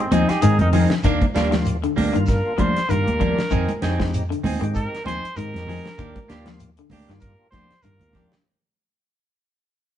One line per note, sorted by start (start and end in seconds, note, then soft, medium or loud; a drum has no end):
0.00 0.14 C4 medium
0.11 0.26 D#2 medium
0.11 0.35 F3 medium
0.11 0.28 C4 medium
0.11 0.28 D#4 medium
0.11 0.31 D#4 medium
0.11 0.28 G#4 medium
0.11 closed hi-hat medium
0.11 high conga medium
0.11 shekere soft
0.29 0.46 D#4 soft
0.29 0.43 G4 medium
0.29 0.46 G#4 medium
0.29 muted fingered electric bass stroke soft
0.29 snare soft
0.29 closed hi-hat soft
0.42 0.57 G#2 medium
0.42 0.66 D#3 medium
0.42 0.92 G#3 medium
0.42 0.92 C4 medium
0.42 0.92 D#4 medium
0.42 0.59 G#4 loud
0.42 0.93 A#4 medium
0.42 closed hi-hat medium
0.42 shekere medium
0.59 0.85 F2 medium
0.59 0.69 D#4 medium
0.59 closed hi-hat soft
0.59 high conga medium
0.59 low conga medium
0.73 0.96 F3 medium
0.73 0.93 C4 medium
0.73 0.93 D#4 medium
0.73 0.94 G#4 medium
0.73 open hi-hat medium
0.73 low conga medium
0.73 shekere soft
0.90 snare medium
0.90 closed hi-hat soft
1.03 1.18 D#2 medium
1.03 1.27 D#3 medium
1.03 1.24 A#3 medium
1.03 1.24 D4 medium
1.03 1.25 A#4 medium
1.03 muted clean electric guitar stroke medium
1.03 kick medium
1.03 closed hi-hat medium
1.03 shekere medium
1.22 kick medium
1.22 closed hi-hat soft
1.22 high conga medium
1.34 1.86 D#2 medium
1.34 1.55 G3 medium
1.34 1.55 A#3 medium
1.34 1.77 A#3 medium
1.34 1.55 D4 medium
1.34 1.77 D4 medium
1.34 1.77 F4 medium
1.34 1.77 G4 medium
1.34 1.55 A#4 medium
1.34 snare medium
1.34 closed hi-hat medium
1.34 shekere soft
1.51 1.75 F3 medium
1.51 snare medium
1.51 closed hi-hat soft
1.51 high conga medium
1.65 closed hi-hat medium
1.65 shekere medium
1.84 2.06 D3 medium
1.84 closed hi-hat soft
1.96 2.12 D2 medium
1.96 2.16 G3 medium
1.96 2.16 A#3 medium
1.96 2.17 D4 medium
1.96 2.17 A#4 medium
1.96 open hi-hat medium
1.96 high conga medium
1.96 low conga medium
1.96 shekere soft
2.13 2.40 G2 medium
2.13 2.37 D#3 medium
2.13 2.53 A#3 medium
2.13 2.53 D4 medium
2.13 2.54 F4 medium
2.13 2.54 A#4 medium
2.13 closed hi-hat soft
2.26 2.61 A#4 medium
2.26 kick medium
2.26 snare soft
2.26 closed hi-hat medium
2.26 shekere medium
2.58 2.73 D2 medium
2.58 2.81 F3 medium
2.58 2.78 G3 medium
2.58 2.79 A#3 medium
2.58 2.79 D4 medium
2.58 2.79 A#4 medium
2.58 2.92 C5 loud
2.58 kick medium
2.58 closed hi-hat medium
2.58 high conga medium
2.58 shekere soft
2.77 muted fingered electric bass stroke soft
2.77 snare soft
2.77 closed hi-hat soft
2.89 3.04 G2 loud
2.89 3.12 D#3 medium
2.89 3.39 A#3 medium
2.89 3.39 D4 medium
2.89 3.40 F4 medium
2.89 3.39 G4 medium
2.89 3.82 A#4 loud
2.89 closed hi-hat medium
2.89 shekere medium
3.07 3.32 D#2 medium
3.07 closed hi-hat soft
3.07 high conga medium
3.20 3.43 F3 medium
3.20 3.40 G3 medium
3.20 3.40 A#3 medium
3.20 3.40 D4 medium
3.20 3.40 A#4 medium
3.20 kick medium
3.20 closed hi-hat soft
3.20 high conga medium
3.20 low conga medium
3.20 shekere soft
3.38 snare medium
3.38 closed hi-hat soft
3.51 3.66 F2 loud
3.51 3.74 D#3 loud
3.51 3.71 C4 medium
3.51 3.71 D#4 medium
3.51 3.71 G#4 medium
3.51 kick medium
3.51 closed hi-hat medium
3.51 shekere medium
3.69 closed hi-hat soft
3.69 high conga medium
3.82 4.33 F2 medium
3.82 4.23 G#3 medium
3.82 4.23 C4 medium
3.82 4.02 C4 medium
3.82 4.23 D#4 medium
3.82 4.02 D#4 medium
3.82 4.24 G4 medium
3.82 4.02 G#4 medium
3.82 snare medium
3.82 closed hi-hat medium
3.82 shekere soft
3.99 4.22 F3 medium
3.99 kick medium
3.99 snare medium
3.99 high conga medium
4.14 closed hi-hat medium
4.14 shekere medium
4.30 4.53 D3 medium
4.30 closed hi-hat soft
4.44 4.58 D#2 medium
4.44 4.63 C4 medium
4.44 4.64 D#4 medium
4.44 4.64 G#4 medium
4.44 open hi-hat medium
4.44 high conga medium
4.44 low conga medium
4.44 shekere soft
4.59 4.86 G#2 medium
4.59 4.84 D#3 medium
4.59 4.99 G#3 medium
4.59 5.00 C4 medium
4.59 5.00 D#4 medium
4.59 5.00 G4 medium
4.64 closed hi-hat soft
4.74 5.03 A#4 medium
4.74 kick medium
4.74 closed hi-hat medium
4.74 shekere medium
4.95 snare soft
4.95 closed hi-hat soft
5.04 5.19 D#2 medium
5.04 5.29 F3 medium
5.04 5.25 C4 medium
5.04 5.25 D#4 medium
5.04 5.25 G#4 medium
5.04 5.38 C5 loud
5.04 high conga medium
5.04 shekere soft
5.08 closed hi-hat medium
5.24 muted fingered electric bass stroke soft
5.24 closed hi-hat soft
5.35 5.51 G#2 loud
5.35 5.60 D#3 medium
5.35 5.86 G#3 medium
5.35 5.86 C4 medium
5.35 5.86 D#4 medium
5.35 5.86 G4 medium
5.35 6.29 A#4 loud
5.35 closed hi-hat medium
5.35 shekere medium
5.54 5.79 F2 medium
5.54 snare soft
5.54 closed hi-hat soft
5.54 high conga medium
5.54 low conga medium
5.67 5.92 F3 medium
5.67 5.87 C4 medium
5.67 5.87 D#4 medium
5.67 5.88 G#4 medium
5.67 snare soft
5.67 open hi-hat medium
5.67 high conga medium
5.67 low conga medium
5.67 shekere soft
5.86 snare medium
5.98 6.13 D#2 loud
5.98 6.22 D#3 medium
5.98 6.18 A#3 medium
5.98 6.18 D4 medium
5.98 6.18 G4 medium
5.98 kick medium
5.98 closed hi-hat medium
5.98 shekere medium
6.16 kick medium
6.16 closed hi-hat soft
6.16 high conga medium
6.28 6.80 D#2 medium
6.28 6.70 A#3 medium
6.28 6.48 A#3 medium
6.28 6.70 D4 medium
6.28 6.49 D4 medium
6.28 6.70 F4 medium
6.28 6.70 G4 medium
6.28 6.49 G4 medium
6.28 snare medium
6.28 closed hi-hat medium
6.28 shekere soft
6.45 6.70 F3 medium
6.45 snare medium
6.45 closed hi-hat soft
6.45 high conga medium
6.59 closed hi-hat medium
6.59 shekere medium
6.77 7.01 D3 medium
6.77 closed hi-hat soft
6.90 7.05 D2 medium
6.90 7.11 A#3 medium
6.90 7.11 D4 medium
6.90 7.12 G4 medium
6.90 open hi-hat medium
6.90 high conga medium
6.90 low conga medium
6.90 shekere soft
7.07 7.33 G2 loud
7.07 7.32 D#3 medium
7.07 7.47 A#3 medium
7.07 7.47 D4 medium
7.07 7.47 F4 medium
7.07 7.48 G4 medium
7.07 snare soft
7.07 closed hi-hat soft
7.20 7.50 A#4 medium
7.20 kick medium
7.20 closed hi-hat medium
7.20 shekere medium
7.50 7.67 D2 medium
7.50 7.77 F3 medium
7.50 7.72 A#3 medium
7.50 7.73 D4 medium
7.50 7.73 G4 medium
7.50 7.84 C5 loud
7.50 kick medium
7.50 snare soft
7.50 closed hi-hat medium
7.50 high conga medium
7.50 shekere soft
7.71 muted fingered electric bass stroke soft
7.71 snare soft
7.71 closed hi-hat soft
7.83 7.98 G2 medium
7.83 8.07 D#3 medium
7.83 8.33 A#3 medium
7.83 8.33 D4 medium
7.83 8.34 F4 medium
7.83 8.34 G4 medium
7.83 8.31 A#4 medium
7.83 closed hi-hat medium
7.83 shekere medium
8.00 8.26 D#2 medium
8.00 closed hi-hat soft
8.00 high conga medium
8.00 low conga medium
8.13 8.39 F3 medium
8.13 8.34 A#3 medium
8.13 8.34 D4 medium
8.13 8.34 G4 medium
8.13 kick medium
8.13 snare soft
8.13 closed hi-hat soft
8.13 high conga medium
8.13 low conga medium
8.32 snare medium
8.32 closed hi-hat soft